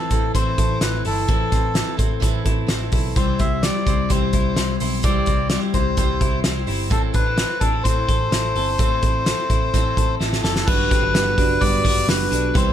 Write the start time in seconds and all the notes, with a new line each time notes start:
Already playing: E3 A3 C4 E4 A4
0.11 A1 A3 C4 E4 A4, kick, closed hi-hat
0.34 A1 A2 E3 A3 C4 E4 A4 C5, kick, closed hi-hat
0.58 A1 A3 C4 E4 A4, kick, closed hi-hat
0.81 A1 A3 C4 E4 A4 B4, snare, closed hi-hat
1.05 G1 A3 C4 E4 A4, open hi-hat
1.28 A1 A2 E3 A3 C4 E4 A4, kick, closed hi-hat
1.51 A1 A3 C4 E4 A4, kick, snare, closed hi-hat
1.74 E3 A3 C4 E4 A4, snare, closed hi-hat
1.97 A1 A3 C4 E4 A4, kick, closed hi-hat
2.20 A1 A2 E3 A3 C4 E4 A4, kick, closed hi-hat
2.44 A1 A3 C4 E4 A4, kick, closed hi-hat
2.67 A1 A3 C4 E4 A4, snare, closed hi-hat
2.92 B1 A3 C4 E4 A4, kick, open hi-hat
3.16 C2 C3 E3 G3 C4 E4 C5, kick, closed hi-hat
3.39 C2 G3 C4 E4 C5 E5, kick, closed hi-hat
3.62 G3 C4 E4 C5 D5, snare, closed hi-hat
3.86 C2 G3 C4 E4 C5, kick, closed hi-hat
4.09 C2 C3 E3 G3 C4 E4 C5, kick, closed hi-hat
4.32 C2 G3 C4 E4 C5, kick, closed hi-hat
4.55 C2 G3 C4 E4 C5, snare, closed hi-hat
4.80 B1 G3 C4 E4 C5, open hi-hat
5.03 C2 C3 E3 G3 C4 E4 C5 D5, kick, closed hi-hat
5.26 C2 G3 C4 E4 C5, kick, closed hi-hat
5.50 G3 C4 E4 C5 D5, snare, closed hi-hat
5.74 C2 G3 C4 E4 C5, kick, closed hi-hat
5.97 C2 C3 E3 G3 C4 E4 C5, kick, closed hi-hat
6.21 C2 G3 C4 E4 C5, kick, closed hi-hat
6.44 C2 G3 C4 E4 C5, snare, closed hi-hat
6.66 G1 G3 C4 E4 C5, open hi-hat
6.90 A1 A2 E3 A3 C4 E4 A4, kick, closed hi-hat
7.12 A1 A3 C4 D4 E4 A4 B4, kick, closed hi-hat
7.26 E4
7.37 A3 C4 E4 A4, snare, closed hi-hat
7.60 A1 A3 C4 D4 E4 A4, kick, closed hi-hat
7.73 E4
7.83 A1 A2 E3 A3 C4 E4 A4 C5, kick, closed hi-hat
8.08 A1 A3 C4 E4 A4, kick, closed hi-hat
8.31 A1 A3 C4 E4 A4, snare, closed hi-hat
8.55 G1 A3 C4 E4 A4, open hi-hat
8.78 A1 A2 E3 A3 C4 E4 A4, kick, closed hi-hat
9.01 A1 A3 C4 E4 A4, kick, closed hi-hat
9.25 A3 C4 E4 A4, snare, closed hi-hat
9.50 A1 A3 C4 E4 A4, kick, closed hi-hat
9.73 A1 A2 E3 A3 C4 E4 A4, kick, closed hi-hat
9.97 A1 A3 C4 E4 A4, kick, closed hi-hat
10.19 A1 A3 C4 E4 A4, snare
10.33 snare
10.43 F#1 A3 C4 E4 A4, snare
10.56 snare
10.66 G1 F#3 G3 D4 F#4 G4 B4, kick, crash
10.91 C4 D4 F#4 G4 A4 B4, kick, snare, hi-hat pedal, open hi-hat
11.03 G1 D4
11.14 G1 G3 B3 D4 F#4 G4 B4, snare, hi-hat pedal, open hi-hat
11.37 F#1 D4 F#4 G4 B4 D5, kick, hi-hat pedal, open hi-hat
11.61 G1 G3 B3 D4 F#4 G4 B4 D5, kick, hi-hat pedal, open hi-hat
11.85 G1 D4 F#4 G4 B4, kick, hi-hat pedal, open hi-hat
12.08 F#1 G3 B3 D4 F#4 G4 B4, snare, hi-hat pedal, open hi-hat
12.30 B1 D4 F#4 G4 A4 B4, hi-hat pedal, open hi-hat
12.54 C2 C3 E3 G3 C4 E4 G4 B4 C5, kick, hi-hat pedal, open hi-hat